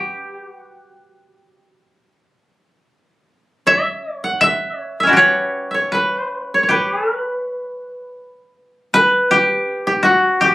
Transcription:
koto
Already playing: G4 B4
0.46 F#4
3.67 E5
4.15 C#5
4.24 F#5
4.41 E5
4.79 C#5
5.00 C#4 E5
5.07 E4 F#4
5.13 G4 B4
5.17 C#5
5.71 C#5 E5
5.92 B4
6.54 C#5
6.63 C#5
6.69 G4 B4
7.16 B4
8.94 B4
9.31 G4
9.87 G4
10.03 F#4
10.41 G4

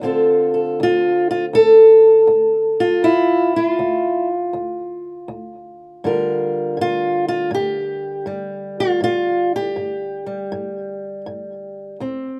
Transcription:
steel-string acoustic guitar
0.01 D2 D3 C4 F4 A4
0.54 A4
0.80 D2 F4
1.31 F4
1.53 D2 A4
2.27 D2
2.80 F4
3.03 D2 E4
3.56 E4
3.67 F4
3.79 D2
4.53 D2
5.28 D2
6.04 G2 D3 G3 F4 A#4
6.77 G2
6.81 F4
7.28 F4
7.51 G2 G4
8.26 G2 G3
8.80 F4
9.01 G2 F4
9.56 G4
9.76 G2
10.26 G3
10.52 G2
11.26 G2
12.00 D2 C4

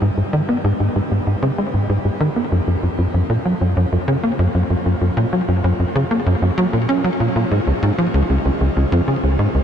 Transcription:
analog synth bass
0.02 G#2
0.17 G#2
0.33 D#3
0.49 B3
0.64 G#2
0.80 G#2
0.96 G#2
1.11 G#2
1.27 G#2
1.43 C#3
1.58 G#3
1.74 G#2
1.90 G#2
2.05 G#2
2.21 D#3
2.36 B3
2.52 F#2
2.67 F#2
2.83 F#2
2.99 F#2
3.14 F#2
3.30 A#2
3.45 F#3
3.61 F#2
3.77 F#2
3.92 F#2
4.08 C#3
4.24 A#3
4.39 F#2
4.55 F#2
4.70 F#2
4.86 F#2
5.01 F#2
5.17 A#2
5.33 F#3
5.48 F#2
5.64 F#2
5.80 F#2
5.95 C#3
6.11 A#3
6.26 F#2
6.42 F#2
6.58 F#3
6.73 A#2
6.89 C#4
7.04 F#3
7.20 A#2
7.36 A#2
7.51 G#2
7.67 C#2
7.83 G#2
7.98 F3
8.14 C#2
8.30 C#2
8.45 C#2
8.61 C#2
8.77 C#2
8.92 F2
9.08 C#3
9.23 C#2
9.39 G#2
9.55 C#2

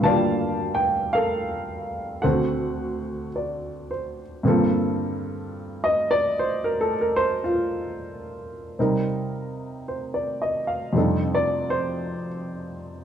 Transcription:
grand piano
Already playing: A4 A#4 F5
0.00 G2 D3 A5
0.05 A#3 F4 D5 F5
0.11 G4
0.75 G5
1.13 A4 A#4 F5
2.22 D2 D3 C4 F#4 A4 C5 F#5
2.27 A4
3.36 D5
3.91 C5
4.43 G2 D3 A#3 C4 F4
4.48 A4
5.84 D#5
6.11 D5
6.39 C5
6.64 A#4
6.81 A4
7.01 A#4
7.16 C5
7.44 F4
8.79 C3 G3 C4 D#4 A#4
9.88 C5
10.14 D5
10.42 D#5
10.67 F5
10.93 F2 C3 G3 D4
10.97 D#4 A4
11.35 D5
11.70 C5

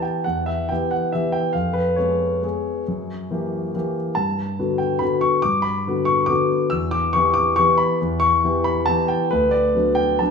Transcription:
grand piano
Already playing: E3 B3 G4
0.02 G5
0.24 E2 F#5
0.46 E5
0.69 E3 B3 G4 G5
0.91 F#5
1.12 E3 B3 G4 E5
1.32 G5
1.53 F2 F5
1.74 B4
1.96 G#3 B3 G#4 C#5
2.43 G#3 B3 G#4
2.88 F#2
3.31 E3 A#3 G4
3.74 E3 A#3 G4
4.15 G2 A5
4.59 D3 B3 F#4
4.78 G5
4.99 D3 B3 F#4 B5
5.21 C#6
5.42 G2 D6
5.62 B5
5.87 D3 B3 F#4
6.05 C#6
6.26 D3 B3 F#4 D6
6.70 E2 E6
6.91 D6
7.13 E3 B3 G4 C#6
7.34 D6
7.56 E3 B3 G4 C#6
7.78 B5
8.01 E2
8.20 C#6
8.44 E3 B3 G4
8.64 B5
8.86 E3 B3 G4 A5
9.08 G5
9.31 D2 B4
9.51 D5
9.75 F#3 B3 D4
9.95 G5
10.19 F#3 B3 D4 A5

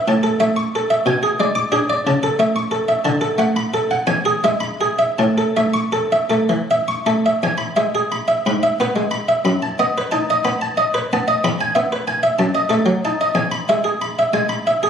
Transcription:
harpsichord
0.08 A2 A5
0.23 A4
0.40 A3 E5
0.56 C#6
0.75 A4
0.90 E5
1.06 B2 G#5
1.23 G#4
1.40 G#3 D5
1.55 D6
1.72 D4 G#4
1.90 D5
2.07 C#3 A5
2.23 A4
2.39 A3 E5
2.56 C#6
2.71 A4
2.88 E5
3.05 D3 A5
3.21 A4
3.38 A3 F#5
3.56 B5
3.74 A4
3.91 F#5
4.07 E2 G#5
4.25 G#4
4.44 G#3 E5
4.60 B5
4.81 G#4
4.99 E5
5.18 A2 A5
5.38 A4
5.57 A3 E5
5.74 C#6
5.92 A4
6.12 E5
6.30 A3 A4
6.49 E3
6.71 E5
6.88 C#6
7.06 A3 A4
7.26 E5
7.43 E2 G#5
7.58 B5
7.76 G#3 E5
7.95 G#4
8.12 B5
8.28 E5
8.46 G#2 B5
8.63 E5
8.80 B3 B4
8.96 G#3
9.11 B5
9.29 E5
9.45 F#2 B5
9.62 A5
9.79 B3 D#5
9.98 B4
10.12 D#4 A5
10.30 D#5
10.45 B3 B5
10.62 A5
10.77 D#5
10.94 B4
11.13 B3 A5
11.28 D#5
11.44 E2 B5
11.61 G#5
11.75 B3 E5
11.92 B4
12.08 G#5
12.23 E5
12.39 F#2 A5
12.55 D#5
12.69 A3 A4
12.86 F#3
13.05 D#4 A5
13.21 D#5
13.35 E2 G#5
13.52 B5
13.69 G#3 E5
13.84 G#4
14.02 B5
14.19 E5
14.33 G#3 G#5
14.49 B5
14.67 E5
14.83 G#4

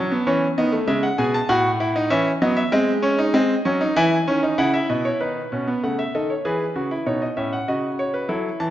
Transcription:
grand piano
Already playing: F#3 C#4 A5
0.12 B3
0.27 E3 C#4 C#5
0.58 D#3 B3 D#5
0.72 A3
0.88 C#3 G#3 E5
1.03 F#5
1.18 B2 G#4 G#5
1.34 A5
1.49 A2 F#4 F#5
1.80 E4
1.96 D#4
2.10 E3 C#4 E5
2.42 F#3 B3 D#5
2.57 E5
2.72 G#3 C4 D#5
3.02 C#4 C#5
3.19 D#4
3.34 G#3 C4 D#5
3.65 F#3 C#4
3.81 D#4
3.96 E3 E4 G#5
4.28 D#3 C#4
4.43 D#4
4.58 C#3 E4 F#5
4.74 E5
4.90 B2 D#5
5.05 C#5
5.20 D#3 D#4 B4
5.52 B2 C#4
5.67 B3
5.83 C#3 A3 F#5
5.99 E5
6.15 D#3 A4 D#5
6.30 C#5
6.45 E3 G#4 B4
6.76 C#3 F#4
6.91 E4
7.06 B2 D#4 C#5
7.22 D#5
7.37 A2 C#4 E5
7.53 F#5
7.68 C#3 F#4 D#5
7.99 C#5
8.14 B4
8.29 F#3 E4 A4
8.60 E3 A5

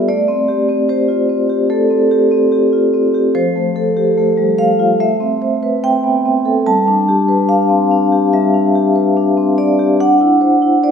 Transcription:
vibraphone
Already playing: G3 B3 F4 G4 D5 E5
0.08 A3 D5
0.28 C4
0.48 G4
0.69 C4
0.89 G4 C5
1.09 F4
1.29 C4
1.50 G4
1.70 A3 A4
1.90 C4
2.11 G4
2.31 C4
2.52 G4
2.73 F4
2.93 C4
3.14 G4
3.35 F3 C5
3.56 A3
3.76 A4
3.97 G4
4.17 A3
4.38 G3
4.58 A3 F5
4.79 F4
5.00 A3 E5
5.20 C4
5.42 C5
5.63 B4
5.84 C4 G5
6.04 B3
6.25 C4
6.46 A4
6.66 G3 A5
6.88 D4
7.08 G4
7.28 B4
7.49 D4 F5
7.70 C4
7.91 D4
8.12 G4
8.33 G3 E5
8.54 D4
8.75 G4
8.96 B4
9.17 D4
9.37 C4
9.58 D4 D5
9.79 G4
10.00 D4 F#5
10.21 E4
10.41 C5
10.62 E4
10.83 C5 D5

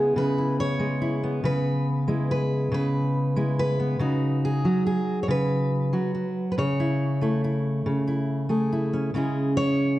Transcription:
steel-string acoustic guitar
Already playing: C#3 G#3 B3 E4 G#4
0.16 C#3 B4
0.38 E4
0.60 C#5
0.79 G#3
1.02 E4
1.23 B3
1.44 C#3 B4
2.08 G#3 E4
2.31 B4
2.72 C#3 B4
3.36 G#3 E4
3.59 B4
3.80 B3
3.99 C#3 D#4 F#4
4.45 G#4
4.65 F#3 F#4
4.87 G#4
5.23 C#5
5.28 C#3 B4
5.93 F#3 F#4
6.15 F#4
6.52 B4
6.58 C#3 C#5
6.80 E4
7.21 A3 E4
7.44 E4
7.86 C#3
8.08 E4
8.49 A3 G#4
8.73 E4
8.93 C#4
9.14 C#3 G#3 C#4 E4 G#4
9.57 C#5

